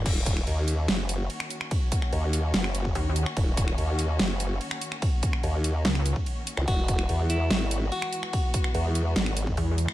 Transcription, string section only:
\new Staff \with { instrumentName = "String section" } { \time 4/4 \key ees \phrygian \tempo 4 = 145 <ees bes des' ges'>1~ | <ees bes des' ges'>1~ | <ees bes des' ges'>1~ | <ees bes des' ges'>1 |
<e gis b fis'>1~ | <e gis b fis'>1 | }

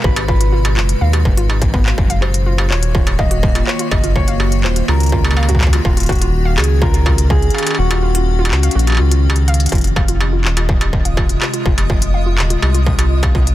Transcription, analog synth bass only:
\new Staff \with { instrumentName = "Analog synth bass" } { \clef bass \time 4/4 \key f \phrygian \tempo 4 = 124 aes,,4. ges,,8 ees,8 ges,,16 aes,,4~ aes,,16 | ges,,4. ees,,2 r8 | ges,,4. ees,,8 des,2 | ees,,4. des,2 r8 |
ees,,4. des,8 bes,,8 des,4. | f,,4. ees,,2 r8 | f,,4. ees,,8 c,2 | }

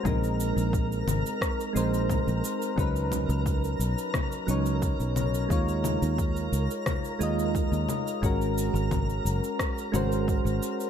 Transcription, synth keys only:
\new Staff \with { instrumentName = "Synth keys" } { \time 4/4 \key ees \minor \tempo 4 = 88 <aes c' ees' bes'>2~ <aes c' ees' bes'>8 <aes c' ees' c''>4. | <ges des' ees' ces''>2~ <ges des' ees' ces''>8 <ges des' ees' des''>4. | <aes ees' f' des''>2~ <aes ees' f' des''>8 <aes ees' f' ees''>4. | <aes des' ges' bes'>2~ <aes des' ges' bes'>8 <aes des' ges' c''>4. | }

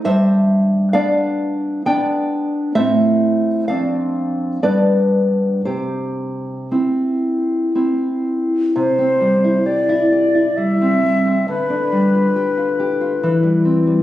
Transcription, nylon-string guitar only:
\new Staff \with { instrumentName = "Nylon-string guitar" } { \time 3/4 \key c \major \tempo 4 = 66 << { <c'' e''>4 <d'' f''>4 <d'' g''>4 | <c'' e''>4 <d'' f''>4 <b' d''>4 | <g' c''>2~ <g' c''>8 r8 | r2. |
r2. | } \\ { g,4 <b d'>4 <b d'>4 | <a, a c'>4 <f, c' d'>4 <g, b d'>4 | c4 <c' e'>4 <c' e'>4 | c16 c'16 g16 e'16 g'16 e'16 g'16 e'16 g16 c'16 g16 c'16 |
d16 d'16 g16 f'16 g'16 f'16 g'16 f'16 e16 g16 c'16 g16 | } >> }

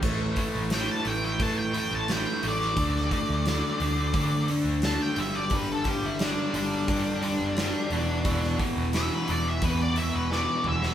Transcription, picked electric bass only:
\new Staff \with { instrumentName = "Picked electric bass" } { \clef bass \time 4/4 \key a \dorian \tempo 4 = 88 a,,8 r16 a,,8 r16 a,,8 a,8. a,,8 r16 a,,8 | d,8 r16 d,8 r16 d,8 d8. d,8 r16 g,,8 | g,,8 r16 g,,8 r16 g,,8 g,8. fis,,8 r16 e,,8 | e,,8 r16 e,,8 r16 e,,8 e,8. e,,8 r16 e,,8 | }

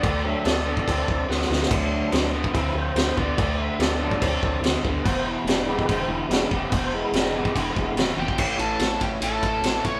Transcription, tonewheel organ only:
<<
  \new Staff \with { instrumentName = "Tonewheel organ" } { \time 4/4 \key e \mixolydian \tempo 4 = 144 d''8 e''8 <a' d''>2 r4 | r2 e'8 c''4 d''8~ | d''8 e''8 <a' d''>2 r4 | <b' c''>8 e'8 d'8 g'8 <b' c''>8 e'8 d'8 g'8 |
<b' c''>8 r8 d'8 g'8 e'2 | \key a \mixolydian <a cis' e' cis''>1 | }
  \new Staff \with { instrumentName = "Tonewheel organ" } { \time 4/4 \key e \mixolydian r8 <fis a d'>8 r2. | <fis a d'>4. r2 r8 | r4. <fis a d'>8 r2 | r4. <gis b e'>8 r4 <gis b e'>8 r8 |
r8 <gis b e'>4. r8 <gis b e'>8 r4 | \key a \mixolydian r1 | }
>>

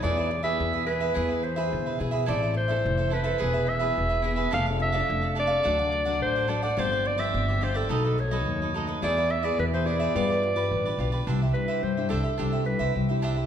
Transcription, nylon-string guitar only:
\new Staff \with { instrumentName = "Nylon-string guitar" } { \time 4/4 \key e \phrygian \tempo 4 = 107 << { <b e' gis'>8 r16 <b e' gis'>8. <b e' gis'>8 <b e' gis'>8 r16 <e' gis'>8. <b e' gis'>8 | <e c' e'>8 r16 <e c' e'>8. <e c' e'>16 r16 <b e' gis'>8 r16 <b e' gis'>8. <b e' gis'>16 r16 | <c' d' a'>8. <c' d' a'>8. <c' d' a'>16 r16 <fis a d'>8. <fis a d'>8. <fis a d'>16 r16 | <f c' d'>8. <f c' d'>8. <f c' d'>16 r16 <fis a dis'>8 r16 <fis a dis'>8. <fis a dis'>8 |
<b e' gis'>8. <b e' gis'>8. <b e' gis'>8 <d' f' b'>8. <d' f' b'>8. <d' f' b'>16 r16 | \key c \major <g d' e'>16 r16 <g d' e'>8 r16 <g d' e'>8. <g d' e'>8 <g d' e'>8 r16 <g d' e'>8. | } \\ { e4 b,4 e4 b,4 | a,4 e4 e4 b,4 | f4 c4 d4 a,4 | g,4 d4 b,4 fis,4 |
e4 b,4 g4 d4 | c4 g4 c4 g4 | } >> }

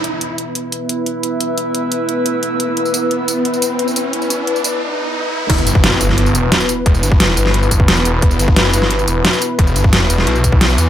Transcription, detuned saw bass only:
\new Staff \with { instrumentName = "Detuned saw bass" } { \clef bass \time 4/4 \key e \minor \tempo 4 = 176 r1 | r1 | r1 | r1 |
e,,8 g,,4 g,,4 e,,8 r4 | e,,8 g,,4 g,,4. e,,4 | e,,8 g,,4 g,,4 e,,8 r4 | e,,8 g,,4 e,,8 b,,4. e,8 | }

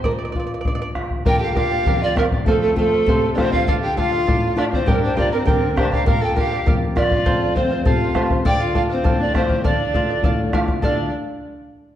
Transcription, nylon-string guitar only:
\new Staff \with { instrumentName = "Nylon-string guitar" } { \time 2/4 \key d \minor \tempo 4 = 100 bes,8 f'8 d'8 f'8 | bes,8 <bes d' f'>8 f,8 <bes d' f'>8 | f,8 <a c' f'>8 c8 <a c' f'>8 | d8 <a d' f'>8 a,8 <a d' f'>8 |
g,8 <bes d' g'>8 d8 <bes d' g'>8 | bes,8 <bes d' f'>8 f,8 <bes d' f'>8 | f,8 <a c' f'>8 c8 <a c' f'>8 | d8 <a d' f'>8 a,8 <a d' f'>8 |
d8 <a d' f'>8 a,8 <a d' f'>8 | <d a d' f' a'>8 r4. | }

